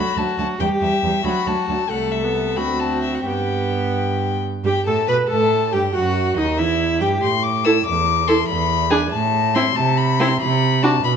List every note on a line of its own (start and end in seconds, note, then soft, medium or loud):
0.00 0.16 F#3 soft
0.00 0.61 F#4 soft
0.00 0.19 B5 medium
0.16 0.24 D2 soft
0.16 0.38 F#3 soft
0.16 0.38 A5 medium
0.38 0.46 D2 soft
0.38 0.59 F#3 soft
0.38 0.47 A5 medium
0.59 0.68 E2 soft
0.59 0.81 G3 soft
0.59 1.24 G4 medium
0.59 0.68 G5 medium
0.81 0.89 E2 soft
0.81 1.03 G3 soft
0.81 1.27 E5 medium
1.03 1.11 E2 soft
1.03 1.24 G3 soft
1.24 1.33 D2 soft
1.24 1.46 F#3 soft
1.24 1.89 F#4 soft
1.24 1.49 B5 medium
1.46 1.54 D2 soft
1.46 1.68 F#3 soft
1.46 1.68 A5 medium
1.68 1.77 D2 soft
1.68 1.90 F#3 soft
1.68 1.92 A5 medium
1.90 2.58 C2 soft
1.90 2.25 A3 soft
1.90 2.59 A4 medium
1.90 2.13 F#5 medium
2.12 2.58 E5 medium
2.23 2.58 B3 soft
2.56 3.25 D2 soft
2.56 3.27 C4 soft
2.56 3.26 F#4 soft
2.56 2.81 B5 medium
2.80 3.02 A5 medium
3.02 3.17 E5 soft
3.15 3.25 F#5 soft
3.26 4.41 G2 soft
3.26 4.44 B3 soft
3.26 4.28 G4 soft
3.26 4.40 G5 medium
4.64 4.72 G2 soft
4.64 4.85 G4 medium
4.64 4.73 G4 medium
4.64 4.85 G5 medium
4.86 5.07 A2 soft
4.86 5.07 A4 medium
4.86 4.95 A4 soft
4.86 5.08 A5 medium
5.08 5.16 B2 medium
5.08 5.16 B4 medium
5.08 5.29 B4 medium
5.08 5.16 B5 medium
5.30 5.74 A2 medium
5.30 5.72 A4 medium
5.30 5.74 A5 medium
5.73 5.94 G2 soft
5.73 5.81 G4 soft
5.73 5.94 G4 soft
5.73 5.96 G5 medium
5.94 6.37 F#2 medium
5.94 6.37 F#4 medium
5.94 6.39 F#4 medium
5.94 6.37 F#5 medium
6.37 6.60 D#2 medium
6.37 6.60 D#4 medium
6.37 6.60 D#5 medium
6.58 7.02 E2 medium
6.58 7.02 E4 medium
6.58 7.00 E5 medium
7.00 7.21 G2 medium
7.00 7.22 G4 medium
7.00 7.09 G5 medium
7.22 7.75 A2 soft
7.22 7.44 C6 medium
7.43 7.66 D6 medium
7.65 7.75 E4 medium
7.65 7.75 A4 medium
7.65 7.86 E6 medium
7.86 8.38 E2 medium
7.86 8.29 D6 medium
8.28 8.38 E4 medium
8.28 8.38 A4 medium
8.28 8.48 C6 medium
8.48 9.01 E2 medium
8.48 8.92 B5 medium
8.90 9.00 D4 medium
8.90 9.00 G#4 medium
8.90 9.11 G#5 medium
9.11 9.66 A2 medium
9.11 9.56 A5 medium
9.55 9.65 C4 medium
9.55 9.65 E4 medium
9.55 9.77 C6 medium
9.76 10.30 C3 medium
9.76 9.99 A5 medium
9.98 10.21 B5 medium
10.19 10.30 C4 medium
10.19 10.30 E4 medium
10.19 10.41 C6 medium
10.41 10.94 C3 medium
10.41 10.85 B5 medium
10.83 10.93 D4 medium
10.83 10.93 F#4 medium
10.83 11.04 A5 medium
11.04 11.17 B2 medium
11.04 11.12 B5 medium